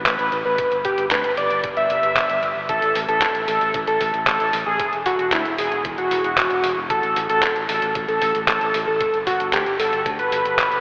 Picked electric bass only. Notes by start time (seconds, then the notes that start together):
0.06 A1
0.19 A1
0.32 A1
0.45 A1
0.59 G1
0.72 G1
0.85 G1
0.98 G1
1.11 D2
1.24 G1
1.37 G1
1.51 G1
1.64 G1
1.77 G1
1.90 G1
2.03 G1
2.16 G1
2.29 G1
2.43 G1
2.56 G1
2.69 A1
2.82 A1
2.95 A1
3.08 A1
3.22 E1
3.35 A1
3.48 A1
3.61 A1
3.74 A1
3.87 A1
4.01 A1
4.14 A1
4.27 A1
4.40 A1
4.53 A1
4.66 A1
4.80 E1
4.93 E1
5.06 E1
5.19 E1
5.32 D2
5.45 E1
5.58 E1
5.72 E1
5.85 E1
5.98 E1
6.11 E1
6.24 E1
6.37 E1
6.51 E1
6.64 E1
6.77 E1
6.90 A1
7.03 A1
7.16 A1
7.30 A1
7.43 E1
7.56 A1
7.69 A1
7.82 A1
7.95 A1
8.08 A1
8.22 A1
8.35 A1
8.48 A1
8.61 A1
8.74 A1
8.87 A1
9.01 G1
9.14 G1
9.27 G1
9.40 G1
9.53 D2
9.66 G1
9.80 G1
9.93 G1
10.06 D2
10.19 G1
10.32 G1
10.45 G1
10.59 G1
10.72 G1